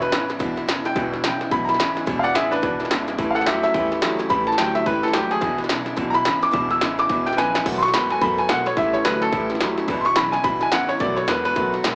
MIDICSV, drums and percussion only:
0, 0, Header, 1, 2, 480
1, 0, Start_track
1, 0, Tempo, 279070
1, 1649, Time_signature, 4, 2, 24, 8
1, 20554, End_track
2, 0, Start_track
2, 0, Title_t, "Drums"
2, 29, Note_on_c, 9, 38, 34
2, 201, Note_off_c, 9, 38, 0
2, 212, Note_on_c, 9, 38, 117
2, 212, Note_on_c, 9, 44, 94
2, 384, Note_off_c, 9, 38, 0
2, 384, Note_off_c, 9, 44, 0
2, 513, Note_on_c, 9, 38, 38
2, 685, Note_off_c, 9, 38, 0
2, 689, Note_on_c, 9, 36, 120
2, 694, Note_on_c, 9, 38, 36
2, 861, Note_off_c, 9, 36, 0
2, 866, Note_off_c, 9, 38, 0
2, 988, Note_on_c, 9, 38, 36
2, 1160, Note_off_c, 9, 38, 0
2, 1180, Note_on_c, 9, 38, 109
2, 1180, Note_on_c, 9, 44, 86
2, 1352, Note_off_c, 9, 38, 0
2, 1352, Note_off_c, 9, 44, 0
2, 1468, Note_on_c, 9, 38, 36
2, 1640, Note_off_c, 9, 38, 0
2, 1649, Note_on_c, 9, 36, 118
2, 1656, Note_on_c, 9, 38, 39
2, 1821, Note_off_c, 9, 36, 0
2, 1828, Note_off_c, 9, 38, 0
2, 1953, Note_on_c, 9, 38, 37
2, 2125, Note_off_c, 9, 38, 0
2, 2129, Note_on_c, 9, 38, 110
2, 2129, Note_on_c, 9, 44, 86
2, 2301, Note_off_c, 9, 38, 0
2, 2301, Note_off_c, 9, 44, 0
2, 2425, Note_on_c, 9, 38, 37
2, 2597, Note_off_c, 9, 38, 0
2, 2605, Note_on_c, 9, 36, 120
2, 2607, Note_on_c, 9, 38, 37
2, 2777, Note_off_c, 9, 36, 0
2, 2779, Note_off_c, 9, 38, 0
2, 2902, Note_on_c, 9, 38, 36
2, 3000, Note_off_c, 9, 38, 0
2, 3000, Note_on_c, 9, 38, 34
2, 3092, Note_off_c, 9, 38, 0
2, 3092, Note_on_c, 9, 38, 113
2, 3092, Note_on_c, 9, 44, 86
2, 3264, Note_off_c, 9, 38, 0
2, 3264, Note_off_c, 9, 44, 0
2, 3386, Note_on_c, 9, 38, 38
2, 3558, Note_off_c, 9, 38, 0
2, 3564, Note_on_c, 9, 38, 35
2, 3565, Note_on_c, 9, 36, 120
2, 3736, Note_off_c, 9, 38, 0
2, 3737, Note_off_c, 9, 36, 0
2, 3862, Note_on_c, 9, 38, 34
2, 4034, Note_off_c, 9, 38, 0
2, 4046, Note_on_c, 9, 38, 111
2, 4046, Note_on_c, 9, 44, 86
2, 4218, Note_off_c, 9, 38, 0
2, 4218, Note_off_c, 9, 44, 0
2, 4341, Note_on_c, 9, 38, 34
2, 4513, Note_off_c, 9, 38, 0
2, 4523, Note_on_c, 9, 36, 125
2, 4525, Note_on_c, 9, 38, 38
2, 4695, Note_off_c, 9, 36, 0
2, 4697, Note_off_c, 9, 38, 0
2, 4816, Note_on_c, 9, 38, 35
2, 4900, Note_off_c, 9, 38, 0
2, 4900, Note_on_c, 9, 38, 34
2, 5003, Note_off_c, 9, 38, 0
2, 5003, Note_on_c, 9, 38, 112
2, 5003, Note_on_c, 9, 44, 81
2, 5175, Note_off_c, 9, 38, 0
2, 5175, Note_off_c, 9, 44, 0
2, 5296, Note_on_c, 9, 38, 36
2, 5468, Note_off_c, 9, 38, 0
2, 5479, Note_on_c, 9, 38, 38
2, 5480, Note_on_c, 9, 36, 113
2, 5651, Note_off_c, 9, 38, 0
2, 5652, Note_off_c, 9, 36, 0
2, 5779, Note_on_c, 9, 38, 36
2, 5869, Note_off_c, 9, 38, 0
2, 5869, Note_on_c, 9, 38, 36
2, 5960, Note_off_c, 9, 38, 0
2, 5960, Note_on_c, 9, 38, 118
2, 5960, Note_on_c, 9, 44, 89
2, 6132, Note_off_c, 9, 38, 0
2, 6132, Note_off_c, 9, 44, 0
2, 6259, Note_on_c, 9, 38, 36
2, 6431, Note_off_c, 9, 38, 0
2, 6437, Note_on_c, 9, 38, 37
2, 6439, Note_on_c, 9, 36, 115
2, 6609, Note_off_c, 9, 38, 0
2, 6611, Note_off_c, 9, 36, 0
2, 6737, Note_on_c, 9, 38, 37
2, 6909, Note_off_c, 9, 38, 0
2, 6915, Note_on_c, 9, 38, 116
2, 6915, Note_on_c, 9, 44, 88
2, 7087, Note_off_c, 9, 38, 0
2, 7087, Note_off_c, 9, 44, 0
2, 7214, Note_on_c, 9, 38, 36
2, 7386, Note_off_c, 9, 38, 0
2, 7399, Note_on_c, 9, 38, 38
2, 7401, Note_on_c, 9, 36, 116
2, 7571, Note_off_c, 9, 38, 0
2, 7573, Note_off_c, 9, 36, 0
2, 7686, Note_on_c, 9, 38, 36
2, 7784, Note_off_c, 9, 38, 0
2, 7784, Note_on_c, 9, 38, 36
2, 7877, Note_off_c, 9, 38, 0
2, 7877, Note_on_c, 9, 38, 109
2, 7877, Note_on_c, 9, 44, 96
2, 8049, Note_off_c, 9, 38, 0
2, 8049, Note_off_c, 9, 44, 0
2, 8173, Note_on_c, 9, 38, 36
2, 8345, Note_off_c, 9, 38, 0
2, 8361, Note_on_c, 9, 38, 37
2, 8364, Note_on_c, 9, 36, 119
2, 8533, Note_off_c, 9, 38, 0
2, 8536, Note_off_c, 9, 36, 0
2, 8656, Note_on_c, 9, 38, 36
2, 8737, Note_off_c, 9, 38, 0
2, 8737, Note_on_c, 9, 38, 34
2, 8832, Note_off_c, 9, 38, 0
2, 8832, Note_on_c, 9, 38, 107
2, 8832, Note_on_c, 9, 44, 84
2, 9004, Note_off_c, 9, 38, 0
2, 9004, Note_off_c, 9, 44, 0
2, 9132, Note_on_c, 9, 38, 36
2, 9304, Note_off_c, 9, 38, 0
2, 9307, Note_on_c, 9, 38, 37
2, 9319, Note_on_c, 9, 36, 117
2, 9479, Note_off_c, 9, 38, 0
2, 9491, Note_off_c, 9, 36, 0
2, 9604, Note_on_c, 9, 38, 36
2, 9701, Note_off_c, 9, 38, 0
2, 9701, Note_on_c, 9, 38, 35
2, 9792, Note_off_c, 9, 38, 0
2, 9792, Note_on_c, 9, 38, 114
2, 9792, Note_on_c, 9, 44, 93
2, 9964, Note_off_c, 9, 38, 0
2, 9964, Note_off_c, 9, 44, 0
2, 10079, Note_on_c, 9, 38, 36
2, 10251, Note_off_c, 9, 38, 0
2, 10263, Note_on_c, 9, 38, 36
2, 10276, Note_on_c, 9, 36, 115
2, 10435, Note_off_c, 9, 38, 0
2, 10448, Note_off_c, 9, 36, 0
2, 10563, Note_on_c, 9, 38, 36
2, 10735, Note_off_c, 9, 38, 0
2, 10755, Note_on_c, 9, 38, 114
2, 10755, Note_on_c, 9, 44, 87
2, 10927, Note_off_c, 9, 38, 0
2, 10927, Note_off_c, 9, 44, 0
2, 11054, Note_on_c, 9, 38, 35
2, 11226, Note_off_c, 9, 38, 0
2, 11237, Note_on_c, 9, 38, 39
2, 11241, Note_on_c, 9, 36, 119
2, 11409, Note_off_c, 9, 38, 0
2, 11413, Note_off_c, 9, 36, 0
2, 11534, Note_on_c, 9, 38, 35
2, 11706, Note_off_c, 9, 38, 0
2, 11719, Note_on_c, 9, 38, 110
2, 11719, Note_on_c, 9, 44, 93
2, 11891, Note_off_c, 9, 38, 0
2, 11891, Note_off_c, 9, 44, 0
2, 12018, Note_on_c, 9, 38, 36
2, 12190, Note_off_c, 9, 38, 0
2, 12203, Note_on_c, 9, 38, 39
2, 12206, Note_on_c, 9, 36, 118
2, 12375, Note_off_c, 9, 38, 0
2, 12378, Note_off_c, 9, 36, 0
2, 12501, Note_on_c, 9, 38, 36
2, 12602, Note_off_c, 9, 38, 0
2, 12602, Note_on_c, 9, 38, 33
2, 12700, Note_off_c, 9, 38, 0
2, 12700, Note_on_c, 9, 38, 66
2, 12700, Note_on_c, 9, 44, 81
2, 12872, Note_off_c, 9, 38, 0
2, 12872, Note_off_c, 9, 44, 0
2, 12988, Note_on_c, 9, 38, 95
2, 13160, Note_off_c, 9, 38, 0
2, 13174, Note_on_c, 9, 36, 120
2, 13176, Note_on_c, 9, 38, 37
2, 13176, Note_on_c, 9, 55, 84
2, 13346, Note_off_c, 9, 36, 0
2, 13348, Note_off_c, 9, 38, 0
2, 13348, Note_off_c, 9, 55, 0
2, 13468, Note_on_c, 9, 38, 38
2, 13558, Note_off_c, 9, 38, 0
2, 13558, Note_on_c, 9, 38, 36
2, 13651, Note_off_c, 9, 38, 0
2, 13651, Note_on_c, 9, 38, 119
2, 13651, Note_on_c, 9, 44, 90
2, 13823, Note_off_c, 9, 38, 0
2, 13823, Note_off_c, 9, 44, 0
2, 13940, Note_on_c, 9, 38, 35
2, 14112, Note_off_c, 9, 38, 0
2, 14130, Note_on_c, 9, 36, 121
2, 14131, Note_on_c, 9, 38, 39
2, 14302, Note_off_c, 9, 36, 0
2, 14303, Note_off_c, 9, 38, 0
2, 14421, Note_on_c, 9, 38, 36
2, 14593, Note_off_c, 9, 38, 0
2, 14603, Note_on_c, 9, 38, 112
2, 14603, Note_on_c, 9, 44, 90
2, 14775, Note_off_c, 9, 38, 0
2, 14775, Note_off_c, 9, 44, 0
2, 14897, Note_on_c, 9, 38, 36
2, 15069, Note_off_c, 9, 38, 0
2, 15080, Note_on_c, 9, 38, 36
2, 15083, Note_on_c, 9, 36, 114
2, 15252, Note_off_c, 9, 38, 0
2, 15255, Note_off_c, 9, 36, 0
2, 15382, Note_on_c, 9, 38, 36
2, 15554, Note_off_c, 9, 38, 0
2, 15564, Note_on_c, 9, 38, 112
2, 15564, Note_on_c, 9, 44, 90
2, 15736, Note_off_c, 9, 38, 0
2, 15736, Note_off_c, 9, 44, 0
2, 15853, Note_on_c, 9, 38, 36
2, 16025, Note_off_c, 9, 38, 0
2, 16039, Note_on_c, 9, 38, 38
2, 16041, Note_on_c, 9, 36, 118
2, 16211, Note_off_c, 9, 38, 0
2, 16213, Note_off_c, 9, 36, 0
2, 16336, Note_on_c, 9, 38, 38
2, 16429, Note_off_c, 9, 38, 0
2, 16429, Note_on_c, 9, 38, 36
2, 16521, Note_off_c, 9, 38, 0
2, 16521, Note_on_c, 9, 38, 111
2, 16521, Note_on_c, 9, 44, 87
2, 16693, Note_off_c, 9, 38, 0
2, 16693, Note_off_c, 9, 44, 0
2, 16815, Note_on_c, 9, 38, 37
2, 16987, Note_off_c, 9, 38, 0
2, 16992, Note_on_c, 9, 38, 38
2, 16999, Note_on_c, 9, 36, 120
2, 17164, Note_off_c, 9, 38, 0
2, 17171, Note_off_c, 9, 36, 0
2, 17284, Note_on_c, 9, 38, 37
2, 17456, Note_off_c, 9, 38, 0
2, 17470, Note_on_c, 9, 38, 119
2, 17470, Note_on_c, 9, 44, 92
2, 17642, Note_off_c, 9, 38, 0
2, 17642, Note_off_c, 9, 44, 0
2, 17770, Note_on_c, 9, 38, 36
2, 17942, Note_off_c, 9, 38, 0
2, 17957, Note_on_c, 9, 38, 38
2, 17961, Note_on_c, 9, 36, 125
2, 18129, Note_off_c, 9, 38, 0
2, 18133, Note_off_c, 9, 36, 0
2, 18246, Note_on_c, 9, 38, 37
2, 18418, Note_off_c, 9, 38, 0
2, 18433, Note_on_c, 9, 38, 118
2, 18433, Note_on_c, 9, 44, 85
2, 18605, Note_off_c, 9, 38, 0
2, 18605, Note_off_c, 9, 44, 0
2, 18733, Note_on_c, 9, 38, 37
2, 18905, Note_off_c, 9, 38, 0
2, 18924, Note_on_c, 9, 36, 125
2, 18925, Note_on_c, 9, 38, 36
2, 19096, Note_off_c, 9, 36, 0
2, 19097, Note_off_c, 9, 38, 0
2, 19221, Note_on_c, 9, 38, 37
2, 19393, Note_off_c, 9, 38, 0
2, 19398, Note_on_c, 9, 38, 120
2, 19398, Note_on_c, 9, 44, 96
2, 19570, Note_off_c, 9, 38, 0
2, 19570, Note_off_c, 9, 44, 0
2, 19701, Note_on_c, 9, 38, 37
2, 19873, Note_off_c, 9, 38, 0
2, 19886, Note_on_c, 9, 36, 116
2, 19888, Note_on_c, 9, 38, 36
2, 20058, Note_off_c, 9, 36, 0
2, 20060, Note_off_c, 9, 38, 0
2, 20190, Note_on_c, 9, 38, 35
2, 20362, Note_off_c, 9, 38, 0
2, 20369, Note_on_c, 9, 38, 111
2, 20369, Note_on_c, 9, 44, 89
2, 20541, Note_off_c, 9, 38, 0
2, 20541, Note_off_c, 9, 44, 0
2, 20554, End_track
0, 0, End_of_file